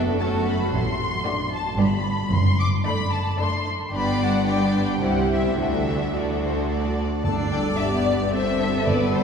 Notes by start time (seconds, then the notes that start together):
Already playing: F#1 F#2 B3 D4 F#4 A4
0.18 A3 C#4 F#4 A4 A5
0.46 B5
0.71 A1 A2 C6
1.25 A3 D4 F#4 D5
1.52 A5
1.78 G1 G2 B3 D4 G4 D5 B5
2.31 F#1 F#2 C6
2.59 D6
2.85 A3 D4 A4 D5 B5
3.13 A5
3.39 A3 D4 A4 D5 C6
3.91 G1 G2 B3 D4 G4 D5 B5
4.21 F#5
4.46 B3 D4 G4 D5 G5
5.00 C2 G3 E4 G4 C5 F#5
5.30 E5
5.55 D2 D3 D4 F#4 A4 E5
6.13 D3 D4 F#4 A4 D5
6.41 C5
6.68 D5
7.23 G1 G2 D4 A4 D5 A5
7.52 G5
7.78 B3 G4 E5
8.05 D5
8.32 C4 A4 C5 E5
8.59 A4
8.85 G2 B3 B4 D5
9.13 C5